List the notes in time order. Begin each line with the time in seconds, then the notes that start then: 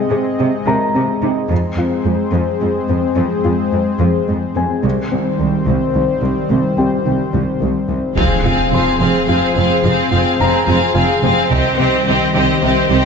Already playing: G#3 C4 G#4 D#5 C6 F6
0.11 C3 G#4
0.39 C3 C4
0.67 C3 G#3 A#4 A#5
0.94 C3 C4
1.22 C3 D#4
1.50 F2 F3 G#3 C4 G#4 C5
1.78 F2 F4
2.05 F2 G#3
2.33 F2 F3
2.61 F2 G#3
2.89 F2 C4
3.16 F2 F3
3.45 F2 F4
3.72 F2 G#3
4.00 F2 F3
4.28 F2 G#3
4.56 F2 C4 G#5
4.83 C2 C3 D#3 G3 C4 C5
5.12 C2 C4
5.40 C2 D#3
5.67 C2 C3
5.95 C2 D#3
6.23 C2 G3
6.50 C2 C3
6.78 C2 C4 G4 G5
7.05 C2 D#3
7.33 C2 C3
7.61 C2 D#3
7.89 C2 G3
8.16 F1 F2 F3 C4 G#4 C5 F5, taiko, impact
8.44 F1 F2 C4 F4 G#4 F5
8.73 F1 F2 C4 G#4 F5 C6
9.00 F1 F2 F3 C4 G#4 F5
9.28 F1 F2 C4 F4 G#4 F5
9.56 F1 F2 C4 G#4 F5
9.83 F1 F2 F3 C4 G#4 F5
10.11 F1 F2 C4 F4 G#4 F5
10.39 F1 F2 C4 G#4 F5 A#5
10.67 F1 F2 F3 C4 G#4 F5
10.95 F1 F2 C4 F4 G#4 F5 G#5
11.23 F1 F2 C4 G#4 F5
11.50 C2 C3 D#3 G3 C4 G4 C5 D#5, taiko
11.77 C2 C3 C4 G4 D#5
12.06 C2 C3 C4 G4 D#5
12.33 C2 C3 C4 G4 D#5
12.62 C2 C3 C4 G4 D#5
12.89 C2 C3 G3 C4 G4 D#5